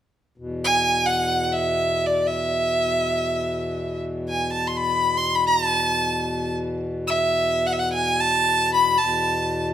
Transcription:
0.38 E2 B2
0.64 G#5
1.06 F#5
1.43 F#5
1.52 E5
2.06 D5
2.27 E5
4.29 G#5
4.52 A5
4.67 C6
4.77 B5
5.17 C6
5.35 B5
5.47 A#5
5.66 A5
7.07 E6
7.12 E5
7.66 F#5
7.72 E5
7.79 F#5
7.93 G#5
8.20 A5
8.74 B5
8.98 E2 B2 A5

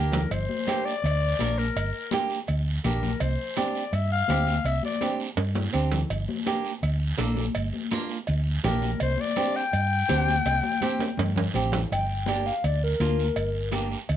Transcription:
Already playing: D2 A#3 D4 G4 A#4
0.12 low conga, low timbale, short guiro
0.31 G1 C5, cowbell, high conga, long guiro
0.49 high conga
0.67 A#3 D4 G4, cowbell, high conga, short guiro
0.85 D5, short guiro
1.03 D2, cowbell, high conga, long guiro
1.39 A#1 A#3 D4 A#4, cowbell, high conga, short guiro
1.58 A#4, short guiro
1.75 G1, cowbell, high conga, long guiro
2.11 A#3 D4 G4, cowbell, high conga, short guiro
2.30 short guiro
2.47 D2, cowbell, high conga, long guiro
2.84 A#1 A#3 D4 G4 A#4, cowbell, high conga, low conga, short guiro
3.03 high conga, low conga, short guiro
3.20 C2 C5, cowbell, high conga, long guiro
3.56 C4 D4 G4 D5, cowbell, high conga, short guiro
3.75 short guiro
3.93 G2 E5, cowbell, high conga, long guiro
4.12 F5
4.28 D2 C4 D4 G4, cowbell, high conga, low timbale, short guiro
4.47 high conga, short guiro
4.64 C2 E5, cowbell, high conga, long guiro
4.83 D5, high conga
5.01 C4 D4 G4, cowbell, high conga, short guiro
5.20 short guiro
5.37 G2, cowbell, high conga, high timbale, long guiro
5.55 high conga, low timbale
5.73 D2 C4 D4 G4, cowbell, short guiro
5.92 low conga, low timbale, short guiro
6.10 G1, cowbell, high conga, long guiro
6.29 high conga
6.46 A#3 D4 G4, cowbell, high conga, short guiro
6.65 short guiro
6.82 D2, cowbell, high conga, long guiro
7.17 A#1 A#3 D4 A4, cowbell, high conga, low timbale, short guiro
7.36 high conga, short guiro
7.54 G1, cowbell, high conga, long guiro
7.73 high conga
7.91 A#3 D4 F4, cowbell, high conga, short guiro
8.09 short guiro
8.27 D2, cowbell, high conga, long guiro
8.64 A#1 A#3 D4 G4 A#4, cowbell, high conga, low conga, low timbale, short guiro
8.82 high conga, short guiro
9.00 C2 C5, cowbell, high conga, long guiro
9.17 D5, high conga
9.36 C4 D4 G4, cowbell, high conga, short guiro
9.56 G5, short guiro
9.73 G2, cowbell, high conga, long guiro
10.09 D2 C4 D4 G4, cowbell, high conga, short guiro
10.27 high conga, short guiro
10.46 C2, cowbell, high conga, long guiro
10.63 high conga
10.81 C4 D4 G4, cowbell, high conga, short guiro
10.99 high conga, high timbale, short guiro
11.17 G2, cowbell, low conga, high timbale, long guiro
11.36 low conga, high timbale
11.53 A1 C4 D4 G4, cowbell, low conga, short guiro
11.72 low conga, low timbale, short guiro
11.90 G1 G5, cowbell, high conga, long guiro
12.26 A#3 D4 G4 D5, cowbell, high conga, short guiro
12.46 F5, short guiro
12.64 D2 D5, cowbell, high conga, long guiro
12.84 A#4
13.00 D2 A#3 D4 F4, cowbell, high conga, short guiro
13.19 short guiro
13.36 G1, cowbell, high conga, long guiro
13.71 A#3 D4 G4, cowbell, high conga, short guiro
13.92 short guiro
14.09 D2, cowbell, high conga, long guiro

